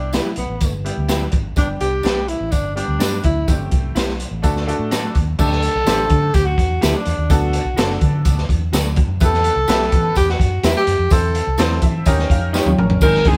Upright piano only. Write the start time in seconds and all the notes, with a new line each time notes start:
Already playing: G3 B3 E4 G4
0.84 G3 B3 E4 G4
1.56 G3 B3 D4 G4
2.75 G3 B3 D4 G4
3.47 A3 C4 E4 G4
4.42 A3 D4 F#4 A4
4.66 A3 D4 F#4 A4
5.38 A3 D4 G4 A4
5.86 A3 D4 G4 C5
7.30 B3 D4 F#4 A4
7.77 B3 C#4 F#4 A4
7.83 D4
9.20 B3 E4 G4 B4
9.68 B3 E4 G4 B4
11.11 C4 E4 A4 C5
11.59 C4 E4 A4 C5
11.83 E5
12.06 C#4 D#4 G4 A#4 D#5
12.31 F5
12.55 F4 C#5 G5
12.79 C#4 A#4 A#5
13.03 D#3 G#3 C4 D#4 G#4
13.26 D#3 G#3 C4 D#4 G#4